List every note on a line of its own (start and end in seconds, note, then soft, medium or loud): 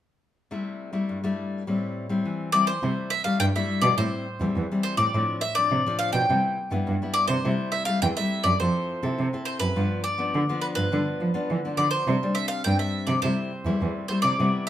0.51 1.06 C3 medium
0.51 0.90 G3 soft
0.51 0.90 A3 medium
0.51 0.90 E4 medium
0.93 1.18 G3 medium
0.93 1.18 A3 medium
0.93 1.18 E4 medium
1.09 1.64 G2 medium
1.24 1.62 G3 medium
1.24 1.62 A3 medium
1.24 1.63 E4 medium
1.67 2.22 A2 medium
1.67 2.06 G3 medium
1.67 2.06 C4 soft
1.67 2.06 E4 medium
2.09 2.49 G3 medium
2.09 2.49 C4 medium
2.09 2.49 E4 medium
2.25 2.80 E3 medium
2.52 2.70 G3 medium
2.52 2.71 C4 medium
2.52 2.71 E4 medium
2.52 2.67 D5 loud
2.67 3.12 C5 medium
2.83 3.38 C3 soft
2.83 2.91 C3 medium
2.83 3.10 G3 medium
2.83 3.10 A3 soft
2.83 3.10 E4 medium
3.10 3.24 E5 medium
3.24 3.50 G3 medium
3.24 3.50 A3 medium
3.24 3.50 E4 medium
3.24 3.39 F5 medium
3.40 3.48 G2 medium
3.40 3.96 G2 medium
3.40 3.45 G5 loud
3.56 3.94 G3 medium
3.56 3.94 A3 medium
3.56 3.94 E4 medium
3.56 3.85 E5 medium
3.81 3.90 B2 medium
3.81 3.97 D5 medium
3.98 4.06 A2 medium
3.98 4.54 A2 soft
3.98 4.26 G3 soft
3.98 4.26 C4 medium
3.98 4.26 E4 medium
3.98 4.82 C5 medium
4.40 4.48 E2 medium
4.40 4.65 G3 medium
4.40 4.66 C4 medium
4.40 4.66 E4 medium
4.56 4.64 E2 medium
4.56 5.11 E3 medium
4.72 5.10 G3 medium
4.72 5.10 C4 medium
4.72 5.10 E4 medium
4.83 4.97 C5 medium
4.97 5.06 A2 medium
4.97 5.39 D5 medium
5.14 5.22 A2 medium
5.14 5.69 A2 medium
5.14 5.41 F3 medium
5.14 5.41 C4 medium
5.14 5.42 D4 medium
5.41 5.55 E5 medium
5.55 5.81 F3 medium
5.55 5.81 C4 medium
5.55 5.81 D4 medium
5.55 5.96 D5 loud
5.71 6.27 A2 soft
5.71 5.79 C3 medium
5.86 6.25 F3 medium
5.86 6.25 C4 medium
5.86 6.26 D4 medium
5.99 6.12 F5 medium
6.13 6.22 B2 medium
6.13 7.11 G5 medium
6.29 6.84 C3 medium
6.29 6.37 C3 medium
6.29 6.57 G3 medium
6.29 6.57 B3 medium
6.29 6.57 E4 medium
6.71 6.79 G2 medium
6.71 6.96 G3 medium
6.71 6.97 B3 medium
6.71 6.97 E4 medium
6.87 7.42 G2 medium
6.87 6.95 G2 medium
7.02 7.41 G3 soft
7.02 7.41 B3 soft
7.02 7.41 E4 medium
7.14 7.27 D5 medium
7.28 7.37 C3 medium
7.28 7.74 C5 medium
7.45 8.00 C3 medium
7.45 7.53 C3 medium
7.45 7.84 G3 medium
7.45 7.84 A3 medium
7.45 7.84 E4 medium
7.72 7.85 E5 medium
7.85 8.12 G3 medium
7.85 8.12 A3 medium
7.85 8.12 E4 medium
7.85 8.01 F5 medium
8.02 8.11 E2 medium
8.02 8.58 C3 medium
8.02 8.07 G5 loud
8.17 8.56 G3 medium
8.17 8.57 A3 medium
8.17 8.57 E4 medium
8.17 8.47 E5 medium
8.44 8.53 F#2 medium
8.44 8.58 D5 medium
8.60 8.69 F2 medium
8.60 9.16 F3 medium
8.60 8.99 C4 soft
8.60 9.00 E4 soft
8.60 9.00 A4 medium
8.60 9.44 C5 medium
9.03 9.11 C3 medium
9.03 9.28 C4 medium
9.03 9.28 E4 medium
9.03 9.28 A4 medium
9.18 9.73 C3 medium
9.18 9.27 C3 medium
9.33 9.72 C4 soft
9.33 9.72 E4 medium
9.33 9.72 A4 medium
9.45 9.59 C5 medium
9.60 9.69 F#2 medium
9.60 10.01 B4 medium
9.76 10.31 G2 medium
9.76 9.85 G2 medium
9.76 10.03 F3 medium
9.76 10.03 B3 soft
9.76 10.04 D4 medium
10.04 10.61 D5 medium
10.18 10.43 F3 medium
10.18 10.43 B3 medium
10.18 10.43 D4 medium
10.34 10.89 D3 soft
10.34 10.43 D3 medium
10.49 10.88 F3 medium
10.49 10.88 B3 medium
10.49 10.88 D4 medium
10.62 10.67 B4 medium
10.75 10.85 G2 medium
10.75 11.77 B4 medium
10.92 11.47 G2 soft
10.92 11.00 D3 medium
10.92 11.31 F3 soft
10.92 11.31 B3 medium
10.92 11.31 D4 medium
11.21 11.29 F3 medium
11.34 11.59 F3 medium
11.34 11.59 B3 medium
11.34 11.59 D4 medium
11.50 12.05 D3 medium
11.50 11.58 E3 medium
11.65 12.03 F3 soft
11.65 12.04 B3 medium
11.65 12.04 D4 medium
11.77 11.86 D3 medium
11.77 11.90 D5 medium
11.91 12.37 C5 medium
12.07 12.63 C3 medium
12.07 12.16 C3 loud
12.07 12.16 G3 medium
12.07 12.17 C4 medium
12.07 12.17 D4 medium
12.23 12.61 G3 medium
12.23 12.61 C4 medium
12.23 12.62 D4 medium
12.35 12.48 E5 medium
12.48 12.63 F5 medium
12.64 13.21 G2 soft
12.64 12.74 G2 medium
12.64 13.19 G3 soft
12.64 13.19 C4 soft
12.64 13.19 D4 medium
12.64 12.79 G5 medium
12.79 13.09 E5 medium
13.07 13.16 C3 medium
13.07 13.21 D5 medium
13.22 13.32 C3 medium
13.22 13.79 C3 soft
13.22 13.51 G3 soft
13.22 13.51 A3 medium
13.22 13.51 E4 medium
13.22 14.05 C5 medium
13.65 13.73 E2 medium
13.65 14.05 G3 medium
13.65 14.05 A3 medium
13.65 14.05 E4 medium
13.81 13.89 E2 medium
13.81 14.37 C3 medium
14.08 14.37 G3 medium
14.08 14.37 A3 medium
14.08 14.37 E4 medium
14.08 14.22 C5 medium
14.22 14.32 C3 medium
14.22 14.64 D5 medium
14.39 14.47 C3 medium
14.39 14.69 C3 medium
14.39 14.69 G3 medium
14.39 14.69 B3 medium
14.39 14.69 E4 medium